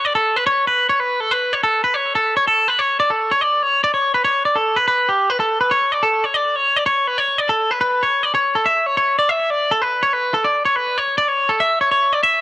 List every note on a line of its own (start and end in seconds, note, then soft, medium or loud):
0.05 0.15 D5 medium
0.15 0.37 A4 medium
0.37 0.46 B4 medium
0.47 0.67 C#5 medium
0.67 0.89 B4 medium
0.89 1.00 C#5 medium
1.00 1.20 B4 medium
1.20 1.31 A4 medium
1.31 1.53 B4 medium
1.53 1.63 C#5 medium
1.63 1.83 A4 medium
1.84 1.94 B4 medium
1.94 2.15 C#5 medium
2.15 2.36 A4 medium
2.37 2.47 C#5 medium
2.48 2.68 A4 medium
2.68 2.79 B4 medium
2.79 2.99 C#5 medium
3.00 3.10 D5 medium
3.10 3.31 A4 medium
3.31 3.41 C#5 medium
3.41 3.63 D5 medium
3.63 3.83 C#5 medium
3.84 3.93 D5 medium
3.94 4.14 C#5 medium
4.14 4.24 B4 medium
4.25 4.45 C#5 medium
4.45 4.56 D5 medium
4.56 4.77 A4 medium
4.76 4.87 B4 medium
4.88 5.08 B4 medium
5.09 5.30 G4 medium
5.30 5.39 B4 medium
5.40 5.60 A4 medium
5.61 5.71 B4 medium
5.71 5.92 C#5 medium
5.92 6.03 D5 medium
6.03 6.24 A4 medium
6.24 6.34 C#5 medium
6.34 6.56 D5 medium
6.56 6.76 C#5 medium
6.76 6.86 D5 medium
6.86 7.07 C#5 medium
7.07 7.18 B4 medium
7.18 7.38 C#5 medium
7.38 7.49 D5 medium
7.49 7.71 A4 medium
7.71 7.80 B4 medium
7.81 8.02 B4 medium
8.03 8.23 C#5 medium
8.23 8.34 D5 medium
8.35 8.55 C#5 medium
8.55 8.65 A4 medium
8.66 8.86 E5 medium
8.86 8.96 C#5 medium
8.97 9.18 C#5 medium
9.19 9.29 D5 medium
9.29 9.50 E5 medium
9.50 9.71 D5 medium
9.71 9.82 A4 medium
9.82 10.02 B4 medium
10.03 10.13 C#5 medium
10.13 10.34 B4 medium
10.34 10.44 A4 medium
10.44 10.65 D5 medium
10.65 10.76 C#5 medium
10.76 10.98 B4 medium
10.98 11.18 C#5 medium
11.18 11.28 D5 medium
11.28 11.49 C#5 medium
11.49 11.60 A4 medium
11.60 11.81 E5 medium
11.81 11.90 C#5 medium
11.91 12.13 C#5 medium
12.13 12.23 D5 medium
12.23 12.41 E5 medium